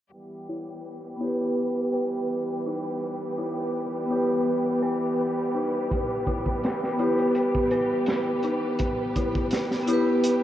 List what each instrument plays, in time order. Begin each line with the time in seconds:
0.12 string section E3 G3 B3 G4, synth texture B4
0.49 synth bell E4
1.16 vibraphone B3
1.21 synth bell E4, vibraphone G4
1.26 vibraphone B4
1.94 synth bell B4
2.66 synth bell D#4
3.38 synth bell E4
4.06 vibraphone B3
4.11 synth bell E4, vibraphone G4
4.16 vibraphone B4
4.83 synth bell B4
5.55 synth bell D#4
5.91 kick, closed hi-hat
6.27 synth bell E4, kick, closed hi-hat
6.46 kick
6.64 snare, closed hi-hat
6.84 snare
6.94 vibraphone B3
6.99 synth bell E4, vibraphone G4, closed hi-hat
7.04 vibraphone B4
7.18 closed hi-hat
7.35 closed hi-hat
7.55 kick
7.71 synth bell B4, closed hi-hat
8.06 snare, closed hi-hat
8.43 synth bell D#4, closed hi-hat
8.79 kick, closed hi-hat
9.16 synth bell E4, kick, closed hi-hat
9.35 kick
9.51 snare, closed hi-hat
9.71 snare
9.83 vibraphone B3 E4
9.87 synth bell E4, vibraphone G4, closed hi-hat
9.93 vibraphone B4
10.24 closed hi-hat